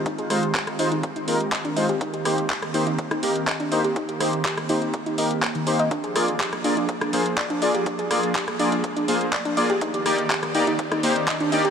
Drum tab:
HH |xxoxxxoxxxoxxxox|xxoxxxoxxxoxxxox|xxoxxxoxxxoxxxox|xxoxxxoxxxoxxxox|
CP |----x-------x---|----x-------x---|----x-------x---|----x-------x---|
SD |--r--r----------|--r--r---r------|--r--r----------|--r--r---r------|
BD |o---o---o---o---|o---o---o---o---|o---o---o---o---|o---o---o---o---|

HH |xxoxxxoxxxoxxxox|xxoxxxoxxxoxxxox|
CP |----x-------x---|----x-------x---|
SD |--r--r----------|--r--r---r------|
BD |o---o---o---o---|o---o---o---o---|